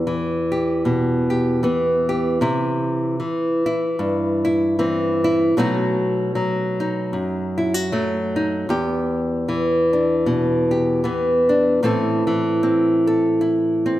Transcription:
0, 0, Header, 1, 2, 480
1, 0, Start_track
1, 0, Key_signature, 1, "minor"
1, 0, Tempo, 784314
1, 1483, Time_signature, 4, 2, 24, 8
1, 8566, End_track
2, 0, Start_track
2, 0, Title_t, "Nylon-string guitar"
2, 0, Program_c, 0, 24
2, 0, Note_on_c, 0, 40, 65
2, 0, Note_on_c, 0, 67, 55
2, 41, Note_on_c, 0, 52, 55
2, 314, Note_off_c, 0, 67, 0
2, 316, Note_on_c, 0, 67, 49
2, 521, Note_on_c, 0, 47, 57
2, 789, Note_off_c, 0, 67, 0
2, 796, Note_on_c, 0, 67, 51
2, 989, Note_off_c, 0, 52, 0
2, 997, Note_on_c, 0, 52, 51
2, 1002, Note_off_c, 0, 47, 0
2, 1002, Note_on_c, 0, 59, 50
2, 1271, Note_off_c, 0, 67, 0
2, 1278, Note_on_c, 0, 67, 56
2, 1457, Note_off_c, 0, 59, 0
2, 1459, Note_off_c, 0, 67, 0
2, 1475, Note_on_c, 0, 48, 63
2, 1480, Note_on_c, 0, 64, 60
2, 1485, Note_off_c, 0, 40, 0
2, 1949, Note_off_c, 0, 52, 0
2, 1956, Note_on_c, 0, 52, 50
2, 1959, Note_off_c, 0, 48, 0
2, 2233, Note_off_c, 0, 64, 0
2, 2240, Note_on_c, 0, 64, 53
2, 2442, Note_on_c, 0, 43, 57
2, 2714, Note_off_c, 0, 64, 0
2, 2721, Note_on_c, 0, 64, 54
2, 2919, Note_off_c, 0, 52, 0
2, 2930, Note_on_c, 0, 52, 58
2, 2933, Note_on_c, 0, 60, 49
2, 3198, Note_off_c, 0, 64, 0
2, 3209, Note_on_c, 0, 64, 63
2, 3377, Note_off_c, 0, 43, 0
2, 3383, Note_off_c, 0, 60, 0
2, 3406, Note_off_c, 0, 52, 0
2, 3409, Note_off_c, 0, 64, 0
2, 3409, Note_on_c, 0, 47, 66
2, 3413, Note_on_c, 0, 54, 53
2, 3415, Note_on_c, 0, 57, 56
2, 3421, Note_on_c, 0, 63, 50
2, 3424, Note_on_c, 0, 66, 64
2, 3880, Note_off_c, 0, 54, 0
2, 3888, Note_on_c, 0, 54, 53
2, 4154, Note_off_c, 0, 63, 0
2, 4162, Note_on_c, 0, 63, 49
2, 4363, Note_on_c, 0, 42, 58
2, 4366, Note_off_c, 0, 47, 0
2, 4634, Note_off_c, 0, 66, 0
2, 4637, Note_on_c, 0, 64, 52
2, 4738, Note_off_c, 0, 64, 0
2, 4738, Note_on_c, 0, 66, 40
2, 4842, Note_off_c, 0, 54, 0
2, 4846, Note_off_c, 0, 57, 0
2, 4849, Note_on_c, 0, 54, 54
2, 4853, Note_on_c, 0, 57, 48
2, 5109, Note_off_c, 0, 63, 0
2, 5116, Note_on_c, 0, 63, 55
2, 5298, Note_off_c, 0, 42, 0
2, 5298, Note_off_c, 0, 63, 0
2, 5301, Note_off_c, 0, 54, 0
2, 5318, Note_on_c, 0, 40, 65
2, 5322, Note_off_c, 0, 66, 0
2, 5325, Note_on_c, 0, 67, 59
2, 5327, Note_off_c, 0, 57, 0
2, 5805, Note_on_c, 0, 52, 55
2, 6078, Note_on_c, 0, 62, 44
2, 6281, Note_on_c, 0, 47, 54
2, 6547, Note_off_c, 0, 67, 0
2, 6555, Note_on_c, 0, 67, 51
2, 6748, Note_off_c, 0, 52, 0
2, 6755, Note_on_c, 0, 52, 54
2, 6762, Note_off_c, 0, 47, 0
2, 6762, Note_on_c, 0, 59, 47
2, 7025, Note_off_c, 0, 62, 0
2, 7032, Note_on_c, 0, 62, 53
2, 7216, Note_off_c, 0, 62, 0
2, 7217, Note_off_c, 0, 59, 0
2, 7217, Note_off_c, 0, 67, 0
2, 7234, Note_off_c, 0, 52, 0
2, 7235, Note_off_c, 0, 40, 0
2, 7237, Note_on_c, 0, 45, 70
2, 7241, Note_on_c, 0, 52, 53
2, 7246, Note_on_c, 0, 60, 53
2, 7249, Note_on_c, 0, 64, 56
2, 7252, Note_on_c, 0, 69, 56
2, 7501, Note_off_c, 0, 52, 0
2, 7508, Note_on_c, 0, 52, 57
2, 7722, Note_off_c, 0, 60, 0
2, 7729, Note_on_c, 0, 60, 54
2, 7994, Note_off_c, 0, 69, 0
2, 8001, Note_on_c, 0, 69, 51
2, 8199, Note_off_c, 0, 64, 0
2, 8206, Note_on_c, 0, 64, 54
2, 8474, Note_off_c, 0, 60, 0
2, 8481, Note_on_c, 0, 60, 55
2, 8566, Note_off_c, 0, 45, 0
2, 8566, Note_off_c, 0, 52, 0
2, 8566, Note_off_c, 0, 60, 0
2, 8566, Note_off_c, 0, 64, 0
2, 8566, Note_off_c, 0, 69, 0
2, 8566, End_track
0, 0, End_of_file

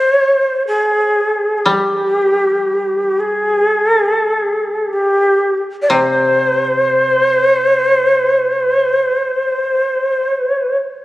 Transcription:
0, 0, Header, 1, 3, 480
1, 0, Start_track
1, 0, Tempo, 500000
1, 10606, End_track
2, 0, Start_track
2, 0, Title_t, "Shakuhachi"
2, 0, Program_c, 0, 77
2, 0, Note_on_c, 0, 72, 60
2, 611, Note_off_c, 0, 72, 0
2, 647, Note_on_c, 0, 68, 56
2, 1514, Note_off_c, 0, 68, 0
2, 1514, Note_on_c, 0, 68, 37
2, 1610, Note_on_c, 0, 67, 57
2, 1624, Note_off_c, 0, 68, 0
2, 3072, Note_on_c, 0, 68, 66
2, 3087, Note_off_c, 0, 67, 0
2, 3667, Note_off_c, 0, 68, 0
2, 3667, Note_on_c, 0, 69, 66
2, 3821, Note_off_c, 0, 69, 0
2, 3821, Note_on_c, 0, 68, 66
2, 3994, Note_off_c, 0, 68, 0
2, 3994, Note_on_c, 0, 69, 66
2, 4157, Note_off_c, 0, 69, 0
2, 4157, Note_on_c, 0, 68, 66
2, 4732, Note_on_c, 0, 67, 58
2, 4746, Note_off_c, 0, 68, 0
2, 5386, Note_off_c, 0, 67, 0
2, 5589, Note_on_c, 0, 74, 46
2, 5658, Note_on_c, 0, 72, 70
2, 5672, Note_off_c, 0, 74, 0
2, 10347, Note_off_c, 0, 72, 0
2, 10606, End_track
3, 0, Start_track
3, 0, Title_t, "Koto"
3, 0, Program_c, 1, 107
3, 1589, Note_on_c, 1, 55, 36
3, 4581, Note_off_c, 1, 55, 0
3, 5662, Note_on_c, 1, 48, 44
3, 8571, Note_off_c, 1, 48, 0
3, 10606, End_track
0, 0, End_of_file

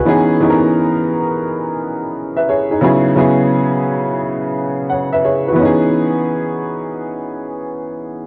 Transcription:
0, 0, Header, 1, 2, 480
1, 0, Start_track
1, 0, Tempo, 689655
1, 38, Time_signature, 4, 2, 24, 8
1, 5754, End_track
2, 0, Start_track
2, 0, Title_t, "Upright piano"
2, 0, Program_c, 0, 0
2, 0, Control_c, 0, 64, 127
2, 0, Note_on_c, 0, 66, 51
2, 0, Note_on_c, 0, 71, 64
2, 35, Note_on_c, 0, 52, 81
2, 42, Note_on_c, 0, 59, 75
2, 45, Control_c, 0, 64, 0
2, 47, Note_on_c, 0, 61, 79
2, 53, Note_on_c, 0, 63, 74
2, 59, Note_on_c, 0, 68, 97
2, 182, Control_c, 0, 64, 127
2, 188, Note_off_c, 0, 71, 0
2, 190, Note_off_c, 0, 66, 0
2, 225, Note_off_c, 0, 52, 0
2, 228, Note_off_c, 0, 59, 0
2, 231, Note_off_c, 0, 61, 0
2, 234, Note_off_c, 0, 63, 0
2, 237, Note_off_c, 0, 68, 0
2, 279, Note_on_c, 0, 52, 82
2, 285, Note_on_c, 0, 59, 73
2, 292, Note_on_c, 0, 61, 69
2, 295, Note_on_c, 0, 63, 74
2, 300, Note_on_c, 0, 68, 74
2, 346, Note_on_c, 0, 70, 84
2, 349, Note_off_c, 0, 68, 0
2, 955, Note_off_c, 0, 52, 0
2, 958, Note_off_c, 0, 59, 0
2, 962, Note_off_c, 0, 61, 0
2, 964, Note_off_c, 0, 63, 0
2, 989, Note_off_c, 0, 70, 0
2, 1646, Note_on_c, 0, 76, 63
2, 1649, Note_on_c, 0, 71, 56
2, 1719, Note_off_c, 0, 76, 0
2, 1720, Note_off_c, 0, 71, 0
2, 1731, Note_on_c, 0, 73, 71
2, 1736, Note_on_c, 0, 68, 61
2, 1875, Note_off_c, 0, 73, 0
2, 1877, Note_off_c, 0, 68, 0
2, 1887, Note_on_c, 0, 68, 61
2, 1893, Note_on_c, 0, 63, 54
2, 1955, Note_on_c, 0, 49, 84
2, 1962, Note_on_c, 0, 54, 80
2, 1966, Control_c, 0, 64, 0
2, 1966, Note_on_c, 0, 59, 75
2, 1967, Note_off_c, 0, 68, 0
2, 1969, Note_on_c, 0, 61, 77
2, 1975, Note_on_c, 0, 64, 80
2, 1978, Note_on_c, 0, 68, 90
2, 2095, Control_c, 0, 64, 127
2, 2113, Note_off_c, 0, 63, 0
2, 2145, Note_off_c, 0, 49, 0
2, 2148, Note_off_c, 0, 54, 0
2, 2150, Note_off_c, 0, 59, 0
2, 2152, Note_off_c, 0, 61, 0
2, 2154, Note_off_c, 0, 64, 0
2, 2156, Note_off_c, 0, 68, 0
2, 2196, Note_on_c, 0, 49, 78
2, 2200, Note_on_c, 0, 54, 75
2, 2206, Note_on_c, 0, 59, 70
2, 2209, Note_on_c, 0, 61, 71
2, 2214, Note_on_c, 0, 64, 75
2, 2218, Note_on_c, 0, 68, 90
2, 2874, Note_off_c, 0, 49, 0
2, 2876, Note_off_c, 0, 54, 0
2, 2879, Note_off_c, 0, 59, 0
2, 2880, Note_off_c, 0, 61, 0
2, 2883, Note_off_c, 0, 64, 0
2, 2885, Note_off_c, 0, 68, 0
2, 3409, Note_on_c, 0, 78, 55
2, 3414, Note_on_c, 0, 73, 46
2, 3554, Note_off_c, 0, 78, 0
2, 3556, Note_off_c, 0, 73, 0
2, 3568, Note_on_c, 0, 76, 68
2, 3573, Note_on_c, 0, 71, 52
2, 3640, Note_off_c, 0, 76, 0
2, 3642, Note_off_c, 0, 71, 0
2, 3649, Note_on_c, 0, 73, 68
2, 3654, Note_on_c, 0, 68, 55
2, 3794, Note_off_c, 0, 73, 0
2, 3797, Note_off_c, 0, 68, 0
2, 3809, Note_on_c, 0, 71, 58
2, 3813, Note_on_c, 0, 66, 50
2, 3845, Note_on_c, 0, 52, 81
2, 3867, Note_on_c, 0, 59, 76
2, 3885, Control_c, 0, 64, 0
2, 3890, Note_on_c, 0, 61, 73
2, 3911, Note_on_c, 0, 63, 74
2, 3934, Note_on_c, 0, 68, 92
2, 4008, Control_c, 0, 64, 127
2, 4031, Note_off_c, 0, 71, 0
2, 4033, Note_off_c, 0, 66, 0
2, 5754, Note_off_c, 0, 52, 0
2, 5754, Note_off_c, 0, 59, 0
2, 5754, Note_off_c, 0, 61, 0
2, 5754, Note_off_c, 0, 63, 0
2, 5754, Note_off_c, 0, 68, 0
2, 5754, End_track
0, 0, End_of_file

